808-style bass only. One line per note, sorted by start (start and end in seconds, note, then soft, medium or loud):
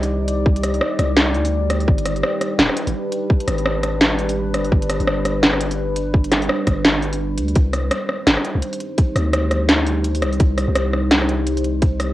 0.00 0.80 C2 loud
0.99 1.36 C2 loud
1.34 1.87 D2 loud
1.88 2.22 G1 loud
2.59 2.68 D1 loud
2.87 2.94 G1 medium
3.48 4.55 G#1 medium
4.54 4.71 G1 medium
4.72 4.99 G1 medium
5.00 6.48 G1 loud
6.67 7.39 G1 loud
7.38 7.55 D2 loud
7.56 7.90 C2 loud
8.27 8.36 G1 loud
8.55 8.62 C2 medium
9.16 10.24 D2 medium
10.22 10.39 C2 medium
10.40 10.67 C2 loud
10.68 12.13 C2 medium